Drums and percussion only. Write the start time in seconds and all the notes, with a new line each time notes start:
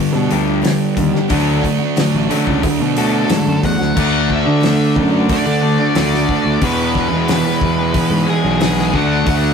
0.31 open hi-hat
0.65 snare, open hi-hat
0.97 kick, open hi-hat
1.15 snare
1.30 kick, open hi-hat
1.64 kick, open hi-hat
1.97 snare, open hi-hat
2.31 open hi-hat
2.47 kick
2.63 kick, open hi-hat
2.97 open hi-hat
3.30 snare, open hi-hat
3.63 kick, open hi-hat
3.82 snare
3.97 kick, crash
4.30 kick
4.63 snare, open hi-hat
4.96 kick
5.29 kick, open hi-hat
5.95 snare, open hi-hat
6.14 snare
6.29 kick
6.62 kick, open hi-hat
6.95 kick, snare
7.28 snare, open hi-hat
7.61 kick
7.94 kick, open hi-hat
8.61 snare, open hi-hat
8.79 snare
8.94 kick
9.26 kick, open hi-hat